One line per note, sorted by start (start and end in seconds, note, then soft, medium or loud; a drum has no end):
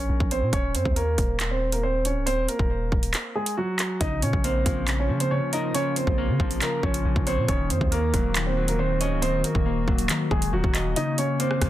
0.00 0.29 C#4 medium
0.00 0.28 C#5 medium
0.09 0.20 A#1 loud
0.20 0.43 A#1 loud
0.20 kick loud
0.31 0.51 C4 medium
0.31 0.50 C5 medium
0.31 closed hi-hat medium
0.42 0.52 A#2 loud
0.53 0.76 D#1 loud
0.53 0.72 C#4 medium
0.53 0.72 C#5 loud
0.53 kick loud
0.53 closed hi-hat medium
0.75 0.85 F#2 medium
0.75 0.94 C4 medium
0.75 0.94 C5 medium
0.75 closed hi-hat medium
0.85 1.17 D#2 loud
0.85 kick medium
0.96 1.48 A#3 medium
0.96 1.47 A#4 medium
0.96 closed hi-hat medium
1.18 2.17 D#1 loud
1.18 kick loud
1.18 closed hi-hat medium
1.40 clap loud
1.40 closed hi-hat medium
1.51 1.70 C4 medium
1.51 1.70 C5 medium
1.72 1.82 A#3 medium
1.72 1.82 A#4 medium
1.72 closed hi-hat medium
1.83 2.02 C4 medium
1.83 2.02 C5 medium
2.05 2.24 C#4 medium
2.05 2.24 C#5 medium
2.05 closed hi-hat medium
2.16 2.34 C#1 loud
2.26 2.46 C4 medium
2.26 2.45 C5 loud
2.26 closed hi-hat medium
2.32 2.48 D#1 loud
2.48 3.32 A#3 medium
2.48 3.31 A#4 medium
2.48 closed hi-hat medium
2.59 2.91 D#1 loud
2.59 kick medium
2.92 3.14 D#1 loud
2.92 kick loud
3.03 closed hi-hat medium
3.14 clap loud
3.14 closed hi-hat medium
3.35 3.55 G#3 medium
3.35 3.54 G#4 medium
3.46 closed hi-hat medium
3.57 3.99 F#3 medium
3.57 3.98 F#4 medium
3.79 clap medium
3.79 closed hi-hat medium
4.01 4.24 A#1 loud
4.01 7.45 C#3 medium
4.01 4.86 C#3 medium
4.01 7.45 A#3 medium
4.01 4.20 D#4 medium
4.01 7.45 F4 medium
4.01 4.19 D#5 loud
4.01 kick loud
4.01 closed hi-hat medium
4.22 4.33 A#2 loud
4.22 4.42 C#4 medium
4.22 4.41 C#5 medium
4.22 closed hi-hat medium
4.33 4.65 A#1 loud
4.33 kick medium
4.44 5.53 A#3 medium
4.44 4.96 C4 medium
4.44 4.95 C5 medium
4.44 closed hi-hat medium
4.66 5.11 A#1 loud
4.66 5.08 F3 medium
4.66 kick medium
4.66 closed hi-hat medium
4.87 5.30 C#3 medium
4.87 clap loud
4.87 closed hi-hat medium
4.99 5.18 C#4 medium
4.99 5.18 C#5 medium
5.09 5.40 C#3 loud
5.09 6.18 F3 medium
5.20 5.30 C4 medium
5.20 5.30 C5 medium
5.20 closed hi-hat medium
5.31 5.73 C#3 medium
5.31 5.50 C#4 medium
5.31 5.50 C#5 medium
5.53 5.72 D#4 medium
5.53 6.62 A#4 medium
5.53 5.72 D#5 medium
5.53 closed hi-hat medium
5.74 6.60 C#3 medium
5.74 5.94 C#4 medium
5.74 5.93 C#5 loud
5.74 closed hi-hat medium
5.96 6.58 C4 medium
5.96 6.58 C5 medium
5.96 closed hi-hat medium
6.07 6.30 A#1 loud
6.07 kick medium
6.18 7.27 A#3 medium
6.29 6.39 C#3 loud
6.40 6.61 A#1 loud
6.40 6.82 F3 medium
6.40 kick loud
6.51 closed hi-hat medium
6.62 7.04 C#3 medium
6.62 6.81 A#3 medium
6.62 6.80 A#4 loud
6.62 clap loud
6.62 closed hi-hat medium
6.83 7.04 A#1 loud
6.83 7.49 F3 medium
6.83 7.24 C#4 medium
6.83 7.24 C#5 medium
6.83 kick medium
6.94 closed hi-hat medium
7.05 7.15 A#1 loud
7.05 7.48 C#3 medium
7.16 7.39 A#1 loud
7.16 kick loud
7.27 7.46 C4 medium
7.27 7.46 C5 medium
7.27 7.49 C#5 medium
7.27 closed hi-hat medium
7.38 7.48 A#2 medium
7.48 7.72 D#1 loud
7.48 8.35 D#3 loud
7.48 10.93 D#3 medium
7.48 11.70 A#3 medium
7.48 7.68 C#4 medium
7.48 10.93 F#4 medium
7.48 7.67 C#5 loud
7.48 kick loud
7.48 closed hi-hat medium
7.70 7.81 F#2 loud
7.70 7.90 C4 medium
7.70 7.89 C5 medium
7.70 closed hi-hat medium
7.81 8.12 D#2 loud
7.81 kick medium
7.92 9.01 A#3 medium
7.92 8.43 A#3 medium
7.92 8.43 A#4 medium
7.92 closed hi-hat medium
8.14 9.13 D#1 loud
8.14 8.56 F#3 medium
8.14 kick loud
8.14 closed hi-hat medium
8.35 8.78 D#3 medium
8.35 clap loud
8.35 closed hi-hat medium
8.46 8.66 C4 medium
8.46 8.65 C5 medium
8.57 9.65 F#3 medium
8.68 8.78 A#3 medium
8.68 8.78 A#4 medium
8.68 closed hi-hat medium
8.79 9.22 D#3 medium
8.79 8.98 C4 medium
8.79 8.98 C5 medium
9.01 9.20 C#4 medium
9.01 9.20 C#5 medium
9.01 10.09 D#5 medium
9.01 closed hi-hat medium
9.12 9.29 C#1 loud
9.22 10.08 D#3 medium
9.22 9.41 C4 medium
9.22 9.41 C5 loud
9.22 closed hi-hat medium
9.28 9.43 D#1 loud
9.44 10.27 A#3 medium
9.44 10.27 A#4 medium
9.44 closed hi-hat medium
9.55 9.86 D#1 loud
9.55 kick medium
9.66 10.75 A#3 medium
9.88 10.09 D#1 loud
9.88 10.30 F#3 medium
9.88 kick loud
9.99 closed hi-hat medium
10.09 10.52 D#3 medium
10.09 clap loud
10.09 closed hi-hat medium
10.31 10.52 D#1 loud
10.31 10.96 F#3 medium
10.31 10.50 G#3 medium
10.31 10.50 G#4 medium
10.31 kick medium
10.42 closed hi-hat medium
10.53 10.63 D#1 loud
10.53 10.96 D#3 medium
10.53 10.94 F#3 medium
10.53 10.94 F#4 medium
10.64 10.95 D#1 loud
10.64 kick loud
10.74 10.96 D#5 medium
10.74 clap medium
10.74 closed hi-hat medium
10.96 11.70 C#3 medium
10.96 11.70 C#3 loud
10.96 11.16 D#4 medium
10.96 11.70 F4 medium
10.96 11.15 D#5 loud
10.96 closed hi-hat medium
11.18 11.37 C#4 medium
11.18 11.37 C#5 medium
11.18 closed hi-hat medium
11.40 11.70 A#3 medium
11.40 11.70 C4 medium
11.40 11.70 C5 medium
11.40 closed hi-hat medium
11.51 cross-stick medium
11.62 11.70 A#1 loud
11.62 11.70 F3 medium
11.62 kick loud
11.62 cross-stick loud
11.62 closed hi-hat medium